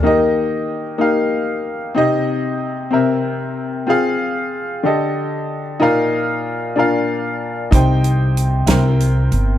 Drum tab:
HH |------|------|------|------|
SD |------|------|------|------|
BD |------|------|------|------|

HH |xxxxxx|
SD |---o--|
BD |o-----|